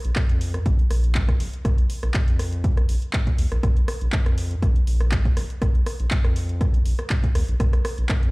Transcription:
0.05 sub bass A#1, closed hi-hat
0.16 kick, cross-stick, clap, closed hi-hat
0.29 sub bass F2, closed hi-hat
0.41 open hi-hat
0.54 cross-stick, closed hi-hat
0.66 sub bass A#1, kick, closed hi-hat
0.79 closed hi-hat
0.91 sub bass A#1, cross-stick, open hi-hat
1.04 closed hi-hat
1.15 kick, clap, closed hi-hat
1.28 kick, cross-stick, closed hi-hat
1.40 sub bass A#1, open hi-hat
1.53 closed hi-hat
1.65 sub bass A#1, kick, cross-stick, closed hi-hat
1.78 closed hi-hat
1.90 open hi-hat
2.03 sub bass A#1, cross-stick, closed hi-hat
2.14 kick, clap, closed hi-hat
2.28 sub bass F2, closed hi-hat
2.39 cross-stick, open hi-hat
2.53 closed hi-hat
2.64 kick, closed hi-hat
2.77 cross-stick, closed hi-hat
2.89 sub bass A#1, open hi-hat
3.02 closed hi-hat
3.13 kick, cross-stick, clap, closed hi-hat
3.27 kick, closed hi-hat
3.38 sub bass D#2, open hi-hat
3.52 sub bass A#1, cross-stick, closed hi-hat
3.63 sub bass A#1, kick, cross-stick, closed hi-hat
3.77 closed hi-hat
3.88 cross-stick, open hi-hat
4.01 sub bass A#1, closed hi-hat
4.12 kick, clap, closed hi-hat
4.26 sub bass F2, cross-stick, closed hi-hat
4.38 open hi-hat
4.51 closed hi-hat
4.62 sub bass A#1, kick, cross-stick, closed hi-hat
4.76 closed hi-hat
4.87 sub bass A#1, open hi-hat
5.01 cross-stick, closed hi-hat
5.12 kick, clap, closed hi-hat
5.25 kick, closed hi-hat
5.37 sub bass A#1, cross-stick, open hi-hat
5.50 closed hi-hat
5.62 sub bass A#1, kick, cross-stick, closed hi-hat
5.75 closed hi-hat
5.86 cross-stick, open hi-hat
6.00 sub bass A#1, closed hi-hat
6.11 kick, clap, closed hi-hat
6.24 sub bass F2, cross-stick, closed hi-hat
6.36 open hi-hat
6.49 closed hi-hat
6.61 kick, cross-stick, closed hi-hat
6.74 closed hi-hat
6.86 sub bass A#1, open hi-hat
6.99 cross-stick, closed hi-hat
7.10 kick, clap, closed hi-hat
7.24 kick, closed hi-hat
7.35 sub bass D#2, cross-stick, open hi-hat
7.48 sub bass A#1, closed hi-hat
7.60 sub bass A#1, kick, cross-stick, closed hi-hat
7.73 cross-stick, closed hi-hat
7.85 cross-stick, open hi-hat
7.98 sub bass A#1, closed hi-hat
8.09 kick, cross-stick, clap, closed hi-hat
8.23 sub bass F2, closed hi-hat

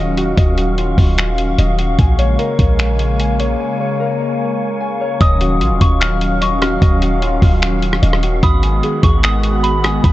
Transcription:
Already playing: 808-style bass D#1, analog synth pad D#3 F#3 C#4 F5, harp F4 F#4 D#5, synth texture F#4 F5 C#6
0.17 harp F#4, closed hi-hat
0.37 808-style bass D#1, harp D#5, kick, closed hi-hat
0.57 harp F#4, closed hi-hat
0.78 harp F4, closed hi-hat
0.98 808-style bass D#1, kick, open hi-hat
1.18 finger snap, closed hi-hat
1.38 closed hi-hat
1.58 808-style bass D#1, harp D#5, closed hi-hat
1.78 harp F#4, closed hi-hat
1.99 808-style bass A#1, analog synth pad C#3 G#3 A#3, synth texture A#4 G#5, harp G#5, kick, closed hi-hat
2.19 harp C#5, closed hi-hat
2.39 harp A#4, closed hi-hat
2.59 808-style bass A#1, kick, closed hi-hat
2.79 finger snap, closed hi-hat
2.99 closed hi-hat
3.20 harp G#5, closed hi-hat
3.40 harp C#5, closed hi-hat
3.60 harp G#5
3.80 harp C#5
4.00 harp A#4
4.80 harp G#5
5.01 harp C#5
5.21 808-style bass D#1, analog synth pad D#3 F#3 C#4 F5, synth texture F#4 F5 C#6, harp D#5, synth bell D#6, kick, closed hi-hat
5.41 harp F#4, closed hi-hat
5.61 808-style bass A#1, harp F4, closed hi-hat
5.71 808-style bass D#1
5.81 808-style bass D#1, synth bell C#6, kick, closed hi-hat
6.00 synth bell F6, finger snap, closed hi-hat
6.21 closed hi-hat
6.41 harp D#5, synth bell C#6, closed hi-hat
6.61 harp F#4, synth bell F6, cross-stick, closed hi-hat
6.82 808-style bass D#1, harp D#5, kick, closed hi-hat
7.02 harp F#4, closed hi-hat
7.22 harp F4, closed hi-hat
7.42 808-style bass D#1, kick, open hi-hat
7.62 finger snap, closed hi-hat
7.82 closed hi-hat
7.93 cross-stick
8.02 808-style bass D#1, harp D#5, closed hi-hat
8.13 cross-stick
8.23 harp F#4, closed hi-hat
8.43 808-style bass G#1, analog synth pad G#3 B3 F#4, synth texture G#4 F#5 B5, harp B5, synth bell D#6, kick, closed hi-hat
8.63 harp G#5, closed hi-hat
8.83 harp G#4, closed hi-hat
9.03 808-style bass G#1, synth bell C#6, kick, closed hi-hat
9.23 synth bell D#6, finger snap, closed hi-hat
9.43 closed hi-hat
9.63 synth bell B5, harp B5, closed hi-hat
9.83 harp G#5, synth bell D#6, cross-stick, closed hi-hat
10.04 808-style bass G#1, harp B5, kick, closed hi-hat

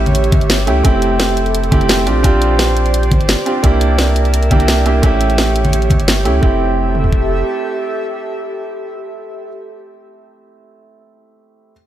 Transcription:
Already playing: sub bass A1, grand piano A3 C#4 E4 G4, analog synth pad G4 C#5 E5
0.06 closed hi-hat, high conga
0.15 closed hi-hat
0.24 closed hi-hat
0.32 kick, closed hi-hat, high conga
0.41 sub bass G1, closed hi-hat
0.50 snare, closed hi-hat
0.67 sub bass C#2, grand piano A3 C#4 E4 G4, closed hi-hat
0.83 sub bass F1, grand piano A3 C4 E4 G4, analog synth pad A4, kick, closed hi-hat
1.02 closed hi-hat
1.20 snare, closed hi-hat
1.37 closed hi-hat
1.46 closed hi-hat
1.55 closed hi-hat
1.64 closed hi-hat
1.71 grand piano A3 C4 E4 G4, kick, closed hi-hat, high conga
1.81 closed hi-hat
1.89 snare, closed hi-hat
2.06 sub bass A#1, grand piano C4 D4 F4 G4, analog synth pad C5 D5, closed hi-hat
2.23 grand piano C4 D4 F4 G4, kick, closed hi-hat
2.33 sub bass A#1
2.42 closed hi-hat
2.59 snare, closed hi-hat
2.77 closed hi-hat
2.86 closed hi-hat
2.94 closed hi-hat
3.03 closed hi-hat
3.11 kick, closed hi-hat, high conga
3.20 sub bass G1, closed hi-hat
3.29 snare, closed hi-hat
3.46 grand piano C4 D4 F4 G4, closed hi-hat
3.62 sub bass C2, grand piano A#3 D4 E4 G4, analog synth pad A#4 E5, kick, closed hi-hat
3.81 closed hi-hat
3.99 snare, closed hi-hat
4.16 closed hi-hat
4.25 closed hi-hat
4.34 closed hi-hat
4.43 closed hi-hat
4.50 grand piano A#3 D4 E4 G4, kick, closed hi-hat, high conga
4.60 closed hi-hat
4.68 snare, closed hi-hat
4.85 grand piano A#3 D4 E4 G4, closed hi-hat
5.02 grand piano A3 C#4 E4 G4, analog synth pad G4 C#5, kick, closed hi-hat
5.12 sub bass A1
5.21 closed hi-hat
5.30 closed hi-hat
5.38 snare, closed hi-hat
5.56 closed hi-hat
5.65 closed hi-hat, high conga
5.73 closed hi-hat
5.82 closed hi-hat
5.90 kick, closed hi-hat, high conga
5.99 sub bass G1, closed hi-hat
6.08 snare, closed hi-hat
6.25 sub bass C#2, grand piano A3 C#4 E4 G4, closed hi-hat
6.41 sub bass F1, grand piano A3 C4 E4 G4, analog synth pad G4 A4 E5, kick
6.95 mid tom
7.04 floor tom
7.12 kick

